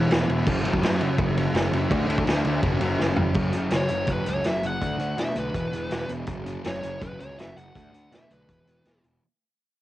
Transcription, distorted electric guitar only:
0.00 0.11 B2 loud
0.00 0.12 E3 loud
0.11 0.27 E2 medium
0.11 0.28 B2 loud
0.11 0.29 E3 loud
0.29 0.46 E2 loud
0.29 0.46 B2 medium
0.29 0.47 E3 loud
0.47 0.64 F#2 medium
0.47 0.65 C#3 medium
0.47 0.67 F#3 loud
0.65 0.81 F#2 medium
0.65 0.83 C#3 loud
0.65 0.84 F#3 medium
0.82 1.00 F#2 medium
0.82 1.01 C#3 loud
0.82 1.02 F#3 loud
1.01 1.17 F#2 medium
1.01 1.18 C#3 loud
1.01 1.20 F#3 loud
1.18 1.36 F#2 medium
1.18 1.37 C#3 medium
1.18 1.38 F#3 loud
1.37 1.53 F#2 loud
1.37 1.53 C#3 loud
1.37 1.55 F#3 loud
1.54 1.70 F#2 medium
1.54 1.71 C#3 medium
1.54 1.73 F#3 medium
1.72 1.89 F#2 medium
1.72 1.90 C#3 medium
1.72 1.91 F#3 loud
1.90 2.06 D3 medium
1.90 2.07 A3 medium
1.90 2.08 D4 loud
2.07 2.24 D3 medium
2.07 2.26 A3 loud
2.07 2.26 D4 loud
2.25 2.42 D3 medium
2.25 2.44 A3 loud
2.25 2.44 D4 loud
2.44 2.61 D3 loud
2.44 2.62 A3 medium
2.44 2.62 D4 loud
2.61 2.79 F#2 loud
2.61 2.80 C#3 loud
2.61 2.80 F#3 loud
2.80 2.98 F#2 medium
2.80 2.99 C#3 loud
2.80 2.99 F#3 loud
2.99 3.16 F#2 medium
2.99 3.17 C#3 medium
2.99 3.17 F#3 medium
3.18 3.34 F#2 medium
3.18 3.34 C#3 medium
3.18 3.35 F#3 medium
3.35 3.52 F#2 medium
3.35 3.53 C#3 medium
3.35 3.54 F#3 loud
3.53 3.71 F#2 medium
3.53 3.72 C#3 medium
3.53 3.73 F#3 medium
3.72 3.88 F#2 medium
3.72 3.90 C#3 medium
3.72 3.90 F#3 medium
3.90 4.07 F#2 medium
3.90 4.07 C#3 loud
3.90 4.08 F#3 loud
4.08 4.26 F#2 loud
4.08 4.26 C#3 loud
4.08 4.27 F#3 loud
4.27 4.43 F#2 medium
4.27 4.44 C#3 medium
4.27 4.45 F#3 medium
4.44 4.61 F#2 medium
4.44 4.62 C#3 medium
4.44 4.63 F#3 loud
4.63 4.80 F#2 medium
4.63 4.80 C#3 medium
4.63 4.81 F#3 medium
4.81 4.97 D3 medium
4.81 4.99 A3 medium
4.81 4.99 D4 loud
4.99 5.16 D3 medium
4.99 5.17 A3 medium
4.99 5.18 D4 medium
5.18 5.34 D3 medium
5.18 5.36 A3 loud
5.18 5.36 D4 medium
5.36 5.53 D3 medium
5.36 5.54 A3 medium
5.36 5.54 D4 medium
5.53 5.71 E2 medium
5.53 5.73 B2 loud
5.53 5.73 E3 loud
5.72 5.89 E2 medium
5.72 5.90 B2 medium
5.72 5.91 E3 medium
5.91 6.07 E2 medium
5.91 6.09 B2 loud
5.91 6.09 E3 loud
6.09 6.26 E2 medium
6.09 6.27 B2 medium
6.09 6.27 E3 medium
6.27 6.44 F#2 medium
6.27 6.45 C#3 medium
6.27 6.46 F#3 loud
6.45 6.63 F#2 medium
6.45 6.64 C#3 medium
6.45 6.65 F#3 medium
6.64 6.81 F#2 medium
6.64 6.82 C#3 medium
6.64 6.83 F#3 loud
6.82 6.99 F#2 medium
6.82 7.00 C#3 medium
6.82 7.01 F#3 loud
7.00 7.19 F#2 medium
7.00 7.20 C#3 medium
7.00 7.20 F#3 loud
7.20 7.37 F#2 medium
7.20 7.38 C#3 medium
7.20 7.39 F#3 medium
7.38 7.56 F#2 medium
7.38 7.57 C#3 medium
7.38 7.58 F#3 medium
7.57 7.74 F#2 medium
7.57 7.75 C#3 medium
7.57 7.75 F#3 loud
7.75 7.92 D3 medium
7.75 7.92 A3 medium
7.75 7.94 D4 medium
7.93 8.11 D3 medium
7.93 8.12 A3 medium
7.93 8.12 D4 loud
8.12 8.28 D3 medium
8.12 8.29 A3 medium
8.12 8.31 D4 medium
8.29 8.47 D3 medium
8.29 8.48 A3 medium
8.29 8.49 D4 medium
8.48 8.64 E2 medium
8.48 8.65 B2 medium
8.48 8.66 E3 medium
8.65 8.83 E2 medium
8.65 8.84 B2 medium
8.65 8.84 E3 medium
8.84 9.02 E2 medium
8.84 9.03 B2 medium
8.84 9.04 E3 medium
9.03 9.21 E2 medium
9.03 9.21 B2 medium
9.03 9.22 E3 medium

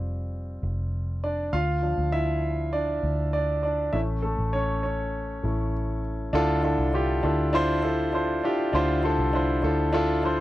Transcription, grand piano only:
0.00 1.55 G3 medium
0.00 1.54 C4 soft
0.00 1.54 F4 medium
1.24 1.51 D4 medium
1.24 1.51 D5 medium
1.53 2.10 F4 medium
1.53 2.15 F5 loud
1.82 3.89 F3 medium
1.82 2.72 D4 soft
2.12 2.70 E4 medium
2.12 2.75 E5 loud
2.73 3.30 D4 medium
2.73 3.32 D5 medium
3.33 3.62 D4 medium
3.33 3.61 D5 medium
3.63 3.92 D4 medium
3.63 3.94 D5 medium
3.93 4.23 A3 medium
3.93 4.54 C#4 soft
3.93 4.01 E4 medium
3.93 3.99 E5 medium
4.22 4.52 A3 medium
4.22 4.51 A4 medium
4.53 4.82 C#4 medium
4.53 4.81 C#5 medium
4.83 5.42 C#4 medium
4.83 6.00 C#5 medium
5.43 5.71 A3 soft
5.43 5.71 C#4 soft
5.43 5.71 E4 medium
6.33 7.20 D3 medium
6.33 6.56 D4 loud
6.33 6.56 E4 loud
6.33 6.57 F4 loud
6.33 6.57 A4 loud
6.63 6.86 D4 medium
6.63 6.86 E4 medium
6.63 6.86 F4 medium
6.63 6.87 A4 medium
6.93 7.16 D4 medium
6.93 7.16 E4 medium
6.93 7.16 F4 medium
6.93 7.17 G4 medium
7.23 7.46 D4 medium
7.23 7.46 E4 medium
7.23 7.46 F4 medium
7.23 7.47 A4 medium
7.53 7.76 D4 loud
7.53 7.76 E4 loud
7.53 7.76 F4 loud
7.53 7.77 C5 loud
7.83 8.06 D4 medium
7.83 8.06 E4 medium
7.83 8.06 F4 medium
7.83 8.07 A4 medium
8.13 8.36 D4 medium
8.13 8.36 E4 medium
8.13 8.36 F4 medium
8.13 8.37 C5 medium
8.44 8.66 D4 medium
8.44 8.66 E4 medium
8.44 8.67 F4 medium
8.44 8.67 G4 medium
8.73 9.60 D3 medium
8.73 8.96 D4 loud
8.73 8.96 E4 medium
8.73 8.97 F4 loud
8.73 8.97 C5 loud
9.03 9.26 D4 medium
9.03 9.26 E4 medium
9.03 9.26 F4 medium
9.03 9.27 A4 loud
9.33 9.56 D4 medium
9.33 9.56 E4 medium
9.33 9.57 F4 medium
9.33 9.57 C5 medium
9.62 9.86 D4 medium
9.62 9.86 E4 medium
9.62 9.86 F4 medium
9.62 9.86 A4 loud
9.93 10.16 D4 loud
9.93 10.16 E4 loud
9.93 10.16 F4 loud
9.93 10.17 A4 loud
10.23 10.40 D4 medium
10.23 10.40 E4 medium
10.23 10.40 F4 medium
10.23 10.40 C5 medium

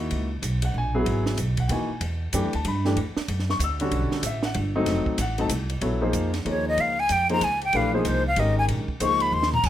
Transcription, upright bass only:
0.00 0.10 D#2 medium
0.11 0.42 C#2 medium
0.42 0.73 B1 medium
0.74 1.05 A#1 medium
1.06 1.37 G#1 medium
1.37 1.68 B1 medium
1.69 1.88 D#2 medium
1.89 muted upright bass stroke soft
2.01 2.32 E2 medium
2.33 2.44 F#2 medium
2.44 2.54 E2 medium
2.54 2.64 D2 medium
2.65 2.96 G2 loud
2.96 3.15 E2 medium
3.17 muted upright bass stroke soft
3.28 3.59 F#2 medium
3.59 3.90 D2 medium
3.91 4.10 B1 medium
4.11 muted upright bass stroke soft
4.22 4.54 A1 medium
4.55 4.85 G1 medium
4.86 5.05 F1 medium
5.18 5.49 A1 medium
5.49 5.81 C2 medium
5.81 6.12 A#1 medium
6.13 6.44 F2 medium
6.45 6.76 D#2 medium
6.78 7.08 C#2 medium
7.10 7.40 F2 medium
7.41 7.72 C#2 medium
7.73 8.04 A#1 medium
8.05 8.36 C2 medium
8.37 8.67 G#1 medium
8.68 8.87 A#1 medium
8.88 muted upright bass stroke soft
9.00 9.31 C#2 medium
9.32 9.63 D#2 medium
9.64 9.69 F2 medium

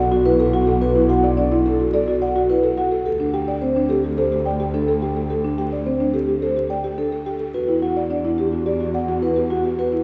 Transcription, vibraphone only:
0.00 0.16 F#5 medium
0.25 0.44 B4 loud
0.54 0.72 F#5 medium
0.82 1.00 B4 loud
1.10 1.28 F#5 medium
1.37 1.56 D5 medium
1.66 1.84 A4 loud
1.93 2.12 D5 medium
2.22 2.40 F#5 medium
2.50 2.68 B4 loud
2.77 2.96 F#5 medium
3.06 3.24 A4 medium
3.34 3.52 G5 medium
3.62 3.80 C5 medium
3.89 4.08 G4 medium
4.17 4.36 C5 medium
4.45 4.64 G5 medium
4.74 4.92 A4 loud
5.02 5.20 G5 medium
5.30 5.48 A4 medium
5.58 5.76 G5 medium
5.86 6.04 C5 medium
6.14 6.32 G4 medium
6.43 6.61 C5 medium
6.70 6.88 G5 medium
6.98 7.16 A4 medium
7.26 7.44 G5 medium
7.54 7.72 B4 medium
7.82 8.01 F#5 medium
8.10 8.29 D5 medium
8.38 8.57 G4 medium
8.66 8.85 D5 medium
8.94 9.13 F#5 medium
9.23 9.41 B4 medium
9.50 9.69 F#5 medium
9.79 9.97 B4 medium

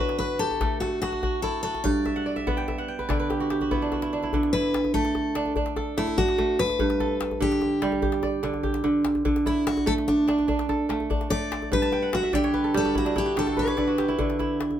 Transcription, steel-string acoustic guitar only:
0.00 0.17 B4 medium
0.18 0.38 B4 medium
0.39 0.80 A4 medium
0.80 1.00 F#4 medium
1.02 1.42 F#4 medium
1.42 1.62 A4 medium
1.63 1.85 A4 medium
1.84 3.87 D5 medium
4.53 4.93 B4 medium
4.94 5.52 A4 medium
5.98 6.16 E4 medium
6.18 6.60 F#4 loud
6.59 7.37 B4 loud
7.42 7.99 G4 medium
9.47 9.66 E4 medium
9.67 9.87 F#4 medium
9.87 9.93 A4 loud
10.08 10.65 D4 medium
11.30 11.69 D5 medium
11.73 12.15 B4 medium
12.15 12.33 F#4 medium
12.35 12.76 G4 medium
12.77 12.95 A4 loud
12.98 13.17 F#4 medium
13.18 13.38 G4 medium
13.39 13.58 A4 medium
13.59 14.56 B4 medium

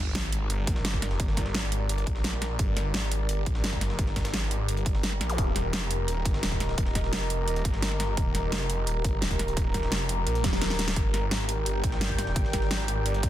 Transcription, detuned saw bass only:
0.00 0.14 G1 loud
0.15 0.49 G#1 loud
0.50 0.66 G1 medium
0.67 0.83 A#1 loud
0.85 1.18 G1 medium
1.20 1.53 G1 loud
1.55 1.88 G#1 loud
1.89 2.06 G1 medium
2.07 2.58 A#1 loud
2.59 2.93 G1 loud
2.94 3.28 G#1 loud
3.29 3.45 G1 loud
3.46 3.62 A#1 loud
3.64 3.97 G1 loud
3.99 4.32 G1 loud
4.34 4.67 G#1 loud
4.68 5.19 G1 loud
5.21 5.37 A#1 loud
5.38 5.72 D#1 loud
5.73 6.07 F1 loud
6.08 6.24 D#1 medium
6.25 6.42 G1 loud
6.43 6.76 D#1 loud
6.78 7.11 D#1 loud
7.13 7.46 F1 loud
7.48 7.64 D#1 medium
7.65 8.16 G1 loud
8.17 8.51 D#1 loud
8.52 8.86 F1 loud
8.87 9.03 D#1 loud
9.04 9.21 G1 loud
9.22 9.55 D#1 medium
9.57 9.90 D#1 loud
9.92 10.25 F1 loud
10.27 10.43 A#1 medium
10.44 10.95 D#1 loud
10.96 11.30 G1 loud
11.31 11.65 G#1 loud
11.66 11.82 G1 medium
11.84 12.00 A#1 loud
12.01 12.35 G1 medium
12.36 12.69 G1 medium
12.71 13.04 G#1 loud
13.06 13.22 G1 medium
13.23 13.29 A#1 loud

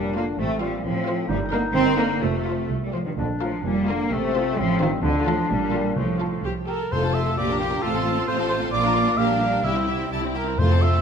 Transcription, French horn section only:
0.00 0.16 A#2 medium
0.16 0.39 D3 medium
0.39 0.61 C3 medium
0.61 0.83 A#2 medium
0.84 1.29 A2 medium
1.29 1.39 A#2 medium
1.51 1.62 D3 medium
1.74 1.97 D#3 medium
1.97 2.21 D3 medium
2.21 2.69 C3 medium
2.80 2.92 A#2 soft
2.93 3.05 A2 soft
3.05 3.17 G2 soft
3.17 3.28 F2 medium
3.41 3.52 A2 soft
3.63 3.74 A#2 medium
3.88 4.10 D3 medium
4.10 4.56 C3 medium
4.56 4.79 A2 medium
4.79 5.02 G2 medium
5.02 5.12 F2 medium
5.26 5.36 A2 medium
5.49 5.95 A#2 medium
5.96 6.44 A2 medium
6.91 7.35 A3 soft
6.91 7.35 F4 soft
7.37 7.83 A#3 soft
7.37 7.82 F4 soft
7.83 8.27 C4 soft
7.83 8.27 F4 medium
8.28 8.72 C4 medium
8.28 8.71 F4 medium
8.72 9.17 A#3 medium
8.72 9.17 F4 medium
9.18 9.64 G3 medium
9.18 9.63 G4 medium
9.65 10.34 G3 soft
9.65 10.34 G4 soft
10.59 11.02 A3 soft
10.59 11.02 F4 soft

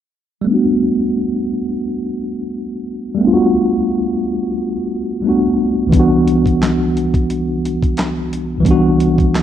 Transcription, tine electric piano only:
0.41 3.13 G3 medium
0.41 3.14 A3 medium
0.48 3.16 B3 medium
0.48 3.18 D4 medium
0.54 3.19 F#4 medium
3.15 5.18 G3 medium
3.15 5.19 A3 medium
3.21 5.21 B3 medium
3.21 5.23 D4 soft
3.27 3.31 F4 medium
3.34 5.27 F#4 medium
5.22 5.90 G3 soft
5.22 5.92 A3 soft
5.22 5.93 B3 soft
5.27 5.94 D4 soft
5.27 5.95 F#4 soft
5.87 8.57 C2 medium
5.87 8.59 E3 medium
5.92 8.61 G3 soft
5.92 8.62 B3 medium
5.97 8.64 D4 medium
5.97 8.65 F#4 medium
8.58 9.43 C2 medium
8.58 9.43 E3 medium
8.63 9.43 G3 medium
8.63 9.43 B3 medium
8.68 9.43 D4 medium
8.68 9.43 F#4 medium

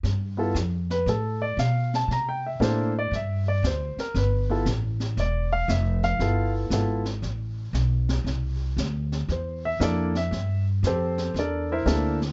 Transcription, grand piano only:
0.37 0.53 B3 medium
0.37 0.53 E4 soft
0.37 0.54 F4 medium
0.37 0.54 A4 medium
0.91 1.07 B4 medium
1.09 1.41 A4 medium
1.42 1.58 D5 medium
1.59 1.92 F5 medium
1.95 2.10 A5 medium
2.12 2.27 A#5 medium
2.29 2.44 G5 medium
2.46 2.62 E5 medium
2.60 2.91 A#3 medium
2.60 2.91 D4 medium
2.60 2.92 E4 medium
2.60 2.92 A4 medium
2.60 2.95 C5 medium
2.99 3.13 D5 medium
3.15 3.47 E5 medium
3.48 3.64 D5 medium
3.67 3.98 C5 medium
4.00 4.15 A#4 medium
4.17 4.64 B4 medium
4.50 4.65 B3 medium
4.50 4.65 E4 soft
4.50 4.65 F4 medium
4.50 4.66 A4 medium
5.20 5.52 D5 medium
5.53 5.69 F5 medium
5.69 6.02 E5 medium
6.04 6.52 F5 medium
6.20 6.70 B3 medium
6.20 6.70 E4 medium
6.20 6.71 F4 medium
6.20 6.71 A4 medium
6.72 7.03 B3 medium
6.72 7.03 E4 soft
6.72 7.03 F4 soft
6.72 7.04 A4 medium
9.32 9.64 C5 medium
9.65 9.81 E5 medium
9.80 10.12 A#3 medium
9.80 10.12 D4 medium
9.80 10.12 E4 medium
9.80 10.13 A4 medium
9.80 10.15 D5 medium
10.17 10.64 E5 medium
10.87 11.34 C4 medium
10.87 11.33 G4 medium
10.87 11.33 A4 medium
10.87 11.33 C5 medium
11.39 11.71 D4 medium
11.39 11.71 A4 medium
11.39 11.71 A#4 medium
11.39 11.70 D5 medium
11.72 11.85 E4 medium
11.72 12.19 A#4 medium
11.72 12.19 C5 medium
11.72 12.19 E5 medium
11.86 12.17 A#3 medium
11.86 12.17 D4 medium
11.86 12.18 E4 medium
11.86 12.18 A4 medium

